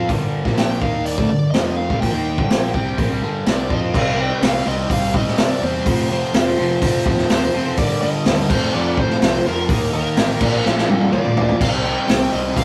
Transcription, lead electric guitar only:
0.59 0.81 G5 medium
0.82 1.07 F5 medium
1.05 1.28 D5 medium
1.30 1.51 D5 medium
1.51 1.78 D#5 medium
1.77 2.00 F5 medium
2.00 3.42 G5 medium
3.50 3.73 D5 medium
3.74 3.95 D#5 medium
3.97 4.18 F5 loud
4.21 4.44 G5 loud
4.45 4.68 F5 loud
4.68 4.92 D#5 loud
4.93 5.16 F5 loud
5.16 5.40 D#5 loud
5.40 5.63 D5 loud
5.64 6.08 C5 loud
6.12 7.31 C5 loud
7.33 7.76 C5 medium
7.79 8.01 D5 loud
8.02 8.51 D#5 loud
8.50 8.74 C5 medium
8.74 8.98 D5 medium
9.00 9.47 C5 medium
9.48 9.91 A#4 loud
9.93 10.69 A#4 loud
10.69 11.09 A4 loud
11.13 11.57 D5 medium
11.61 11.68 F5 medium
11.85 12.34 G5 loud
12.32 12.57 D#5 medium
12.58 12.64 F5 medium

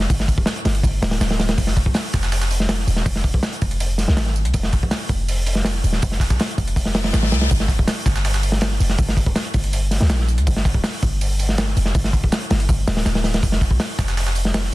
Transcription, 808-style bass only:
0.10 0.39 G1 loud
0.38 0.46 D1 medium
0.65 0.83 G1 loud
0.83 1.00 G1 loud
1.02 1.19 D1 loud
1.20 1.56 D1 medium
1.58 1.88 F1 loud
1.86 1.94 C2 medium
2.14 2.86 F1 medium
2.87 3.04 D#1 medium
3.06 3.35 F1 loud
3.34 3.42 C2 medium
3.62 4.07 F1 loud
4.08 4.18 C2 medium
4.17 4.47 G#1 loud
4.45 4.53 C2 medium
4.54 4.84 F1 loud
4.83 4.91 C2 medium
5.09 5.82 F1 loud
5.84 6.01 D#1 medium
6.03 6.32 F1 loud
6.30 6.39 C2 medium
6.58 7.13 F1 loud
7.13 7.34 G#1 medium
7.32 7.49 C2 medium
7.51 7.80 G1 loud
7.79 7.87 D1 medium
8.06 8.79 G1 medium
8.80 8.97 F1 medium
8.99 9.28 G1 loud
9.26 9.35 D1 medium
9.54 10.00 G1 loud
10.01 10.11 D2 loud
10.10 10.39 A#1 loud
10.38 10.46 D2 loud
10.47 10.76 G1 loud
10.74 10.83 D1 medium
11.03 11.75 G1 loud
11.77 11.93 F1 medium
11.95 12.25 G1 loud
12.24 12.32 D1 medium
12.51 12.68 G1 loud
12.69 12.86 G1 loud
12.87 13.04 D1 loud
13.06 13.42 D1 medium
13.43 13.72 F1 loud
13.71 13.79 C2 medium
13.99 14.71 F1 medium

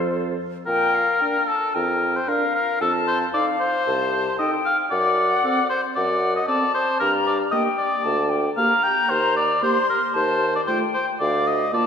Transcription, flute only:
0.00 0.39 C5 medium
0.66 0.96 G5 medium
0.95 1.22 F5 medium
1.20 1.47 G5 medium
1.48 1.76 A5 medium
1.75 2.30 G5 medium
2.29 2.83 F5 medium
2.81 3.33 A5 medium
3.34 3.86 F5 medium
3.87 4.38 A5 medium
4.39 4.89 G5 medium
4.90 5.66 F#5 medium
5.96 6.47 F#5 medium
6.48 7.02 A5 medium
7.00 7.34 A#5 medium
7.52 8.05 G5 medium
8.04 8.31 A5 medium
8.30 8.55 G5 medium
8.55 9.63 A#5 medium
9.62 10.15 C6 medium
10.14 10.66 A5 medium
10.67 11.19 G5 medium
11.20 11.72 F5 medium
11.73 11.87 A5 medium

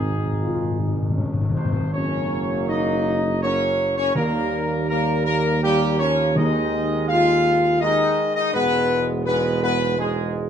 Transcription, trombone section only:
0.00 1.56 D#3 medium
0.00 1.60 D#4 medium
1.94 3.39 F#3 medium
1.94 3.39 A#3 medium
3.42 4.12 F#3 medium
3.42 4.12 A#3 medium
4.15 4.89 G3 medium
4.15 4.85 A#3 medium
4.90 5.59 G3 medium
4.90 5.59 A#3 medium
5.63 5.97 G3 medium
5.63 6.32 A#3 loud
5.99 6.36 F3 loud
6.35 7.80 D#3 loud
6.35 7.81 G#3 loud
7.82 8.50 D#3 loud
7.82 8.50 G#3 loud
8.53 9.25 G#2 loud
8.53 9.22 G#3 medium
9.27 9.95 G#2 loud
9.27 9.95 G#3 loud
9.99 10.50 G#2 loud
9.99 10.50 G#3 loud

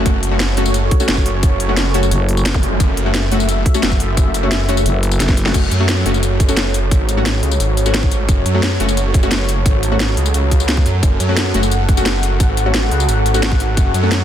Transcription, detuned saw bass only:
0.06 0.90 F#1 loud
1.09 1.59 F#1 loud
1.60 2.10 F#1 loud
2.46 2.79 F#1 loud
2.80 3.64 F#1 loud
3.83 4.33 F#1 loud
4.34 4.84 F#1 loud
5.54 5.70 F#1 loud
5.71 6.04 F#2 medium
6.06 6.90 F#1 loud
6.91 7.42 G#1 loud
7.43 7.59 C#2 medium
7.60 8.10 G#1 loud
8.11 8.27 G#1 loud
8.29 8.44 F#1 loud
8.46 8.79 F#2 loud
8.80 9.64 F#1 loud
9.66 10.16 G#1 loud
10.17 10.33 C#2 loud
10.34 10.84 C#2 loud
10.86 11.01 F#2 loud
11.03 11.19 F#1 loud
11.20 11.53 F#2 loud
11.54 12.39 F#1 loud
12.40 12.90 G#1 loud
12.91 13.07 C#2 loud
13.09 13.59 G#1 loud
13.60 13.76 G#1 loud
13.77 13.93 F#1 loud
13.94 14.24 F#2 loud

